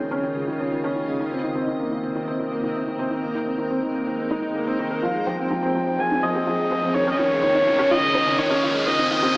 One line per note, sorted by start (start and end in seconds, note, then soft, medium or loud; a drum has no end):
0.00 1.19 C#3 medium
0.00 0.23 D#3 medium
0.00 0.36 G#3 medium
0.00 0.11 C#4 medium
0.00 1.20 C#4 medium
0.00 1.96 F4 medium
0.00 3.88 D#5 medium
0.11 0.23 C#4 medium
0.23 0.35 D#3 medium
0.36 0.47 G#3 medium
0.48 0.54 D#3 medium
0.60 0.67 C#4 medium
0.72 0.79 D#3 medium
0.84 0.95 C#4 medium
0.96 1.07 D#3 medium
1.08 1.19 G#3 medium
1.20 3.11 C3 medium
1.20 1.26 D#3 medium
1.32 1.38 C4 medium
1.39 3.89 C4 medium
1.43 1.50 D#3 medium
1.55 1.67 C4 medium
1.67 1.79 D#3 medium
1.67 5.80 A#4 medium
1.80 1.91 A#3 medium
1.92 1.98 D#3 medium
2.03 2.10 C4 medium
2.15 2.22 D#3 medium
2.28 2.39 C4 medium
2.39 2.51 D#3 medium
2.52 2.63 A#3 medium
2.63 2.70 D#3 medium
2.75 2.82 C4 medium
2.87 2.94 D#3 medium
2.99 3.11 C4 medium
3.11 3.23 D#3 medium
3.11 5.03 G#3 medium
3.23 3.35 A#3 medium
3.31 3.42 D#3 medium
3.31 5.80 D#4 medium
3.46 3.53 C4 medium
3.58 3.66 D#3 medium
3.70 3.82 C4 medium
3.83 3.94 D#3 medium
3.83 5.80 C5 medium
3.94 4.06 A#3 medium
4.07 4.14 D#3 medium
4.19 4.26 C4 medium
4.31 4.42 D#4 medium
4.42 4.54 D#3 medium
4.55 4.67 A#3 medium
4.67 4.79 C4 medium
4.79 4.86 D#3 medium
4.91 5.02 A#4 medium
5.02 6.95 F3 medium
5.02 5.15 F3 medium
5.02 6.94 C4 medium
5.02 5.11 F4 loud
5.02 5.28 F5 medium
5.02 riser medium
5.15 5.27 G#3 medium
5.15 7.71 G#4 medium
5.27 5.34 F3 medium
5.27 5.33 C5 medium
5.27 6.01 G5 loud
5.39 5.46 C4 medium
5.51 5.58 F3 medium
5.51 5.55 D#4 medium
5.63 5.74 C4 medium
5.63 5.68 G#4 medium
5.75 5.87 F3 medium
5.75 5.79 F4 medium
5.87 5.99 G#3 medium
5.87 7.72 G5 medium
5.99 6.06 F3 medium
5.99 6.05 C5 medium
5.99 6.25 G#5 loud
6.11 6.18 C4 medium
6.11 6.15 D#4 medium
6.23 6.30 F3 medium
6.23 6.29 F4 medium
6.23 6.96 D#5 medium
6.35 6.46 C4 medium
6.35 6.39 G4 loud
6.47 6.58 F3 medium
6.47 6.55 F4 loud
6.59 6.71 G#3 medium
6.71 6.78 F3 medium
6.71 6.77 C5 loud
6.83 6.90 C4 medium
6.94 8.87 C#3 medium
6.94 7.02 D#3 medium
6.94 6.99 D#4 medium
6.94 7.11 C#5 medium
7.01 8.87 C#4 medium
7.07 7.19 C#4 medium
7.07 7.13 G#4 medium
7.11 7.19 D#5 medium
7.17 7.31 D#3 medium
7.17 7.22 F4 medium
7.17 7.93 C#5 medium
7.29 7.43 G#3 medium
7.29 9.37 F4 medium
7.29 9.37 D#5 medium
7.43 7.50 D#3 medium
7.43 7.48 C5 medium
7.55 7.62 C#4 medium
7.55 7.58 D#4 medium
7.67 7.74 D#3 medium
7.67 7.72 F4 medium
7.78 7.90 C#4 medium
7.78 7.83 G4 loud
7.90 8.02 D#3 medium
7.90 7.99 F4 loud
7.90 8.40 D#5 loud
8.02 8.14 G#3 medium
8.14 8.22 D#3 medium
8.14 8.21 C5 medium
8.26 8.33 C#4 medium
8.38 8.45 D#3 medium
8.38 8.43 D#4 medium
8.38 8.75 C#5 medium
8.50 8.62 C#4 loud
8.50 8.57 G#4 medium
8.62 8.74 D#3 medium
8.62 8.67 F4 medium
8.74 8.86 G#3 medium
8.86 9.37 C3 medium
8.86 8.94 D#3 medium
8.86 8.93 C5 medium
8.86 9.37 D#5 medium
8.98 9.06 C4 medium
8.98 9.02 D#4 medium
9.11 9.18 D#3 medium
9.11 9.37 C4 medium
9.11 9.17 F4 medium
9.22 9.34 C4 loud
9.22 9.26 G4 loud
9.33 9.37 A#4 medium